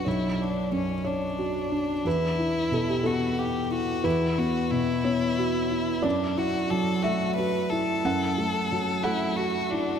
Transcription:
<<
  \new Staff \with { instrumentName = "Violin" } { \time 6/8 \key e \dorian \tempo 4. = 60 e'8 d'8 cis'8 d'4. | e'4. fis'8 g'8 fis'8 | e'8 fis'8 e'2 | d'8 fis'8 a'8 fis'8 b'8 a'8~ |
a'4. e'8 fis'8 d'8 | }
  \new Staff \with { instrumentName = "Felt piano" } { \time 6/8 \key e \dorian cis''4. cis''4. | b'4 a'16 g'16 a'4. | b'4. cis''8 r4 | d''4. e''4. |
fis''4. fis''4. | }
  \new Staff \with { instrumentName = "Felt piano" } { \time 6/8 \key e \dorian <b,, d'>8 cis''8 fis,4 fis'8 d'8 | e,8 e'8 b,8 b8 fis''8 e'8 | e,8 b8 b,8 b8 fis'8 e'8 | fis,8 e'8 fis8 a8 fis'8 e'8 |
fis,8 a8 fis8 a8 fis'8 e'8 | }
>>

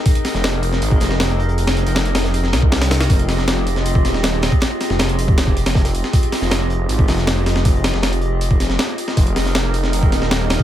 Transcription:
<<
  \new Staff \with { instrumentName = "Ambient pad" } { \time 4/4 \key f \minor \tempo 4 = 158 <c' ees' aes' bes' ees''>4. <c' ees' aes' bes' ees''>4. <c' ees' aes' bes' ees''>4 | <c' ees' aes' bes' ees''>4. <c' ees' aes' bes' ees''>4 r4. | <c' f' g' aes' ees''>4. <c' f' g' aes' ees''>4. <c' f' g' aes' ees''>4 | <c' f' g' aes' ees''>4. <c' f' g' aes' ees''>4 r4. |
<c' f' g' aes' ees''>4. <c' f' g' aes' ees''>4. <c' f' g' aes' ees''>4 | <c' f' g' aes' ees''>4. <c' f' g' aes' ees''>4 r4. | <c' ees' aes' bes' ees''>4. <c' ees' aes' bes' ees''>4. <c' ees' aes' bes' ees''>4 | }
  \new Staff \with { instrumentName = "Detuned saw bass" } { \clef bass \time 4/4 \key f \minor r8. f,,4~ f,,16 aes,,8 f,,4.~ | f,,8. f,,4.~ f,,16 c,4. | f,,2~ f,,8 ees,,4~ ees,,16 r16 | r8. f,,2. r16 |
r8. f,,4~ f,,16 aes,,8 f,,4.~ | f,,8. f,,4.~ f,,16 f,,8 r4 | f,,2~ f,,8 ees,,4~ ees,,16 r16 | }
  \new DrumStaff \with { instrumentName = "Drums" } \drummode { \time 4/4 <hh hho bd>16 hh16 <hh hho sn>16 sn16 <hh hho sn>8 <hh hho>16 sn16 <hh hho>16 bd16 <hh hho sn>16 sn16 <hh hho sn>16 hh16 hh16 hh16 | <hh hho>16 <hho sn>16 hh16 <hho sn>16 <hh hho sn>16 hh16 <hh hho sn>16 <hh sn>16 <hh hho>16 sn16 <hh hho sn>16 bd16 <hh hho sn>16 <hho sn>16 <hh hho sn>16 <hho sn>16 | <hh hho bd>16 hh16 <hh hho sn>16 sn16 <hh hho sn>8 <hh hho>16 sn16 <hh hho>16 bd16 <hh hho sn>16 sn16 <hh hho sn>16 hh16 <hh hho sn>16 <hh bd>16 | <hh hho sn>16 hh16 <hh hho sn>16 sn16 <hh hho sn>16 hh16 <hh hho>16 bd16 <hh hho sn>16 bd16 <hh hho>16 <hho sn>16 <hh bd sn>16 <hh hho sn>16 <hh hho>16 sn16 |
<hh hho bd>16 hh16 <hh hho sn>16 sn16 <hh hho sn>8 hh8 <hh hho>16 bd16 <hh hho sn>16 sn16 <hh hho sn>16 hh16 <hh hho sn>16 <hh sn>16 | <hh hho bd>16 hh16 <hh hho sn>16 sn16 <hh hho sn>16 hh16 hh8 <hh hho>16 bd16 <hh hho sn>16 sn16 <hh hho sn>16 hh16 <hh hho>16 sn16 | <hh hho bd>16 hh16 <hh hho sn>16 sn16 <hh hho sn>8 <hh hho>16 sn16 <hh hho>16 bd16 <hh hho sn>16 sn16 <hh hho sn>16 hh16 <hh hho sn>16 <hh bd>16 | }
>>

